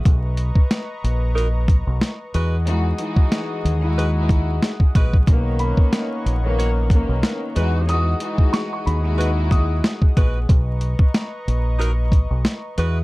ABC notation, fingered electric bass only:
X:1
M:4/4
L:1/16
Q:"Swing 16ths" 1/4=92
K:B
V:1 name="Fingered electric bass" clef=bass
B,,,3 z3 A,,,4- A,,, B,,, z2 E,,2- | E,,2 z4 D,,6 z2 A,,,2 | B,,,3 z3 A,,,4- A,,, B,,, z2 E,,2- | E,,2 z4 D,,6 z2 A,,,2 |
B,,,3 z3 A,,,4- A,,, B,,, z2 E,,2 |]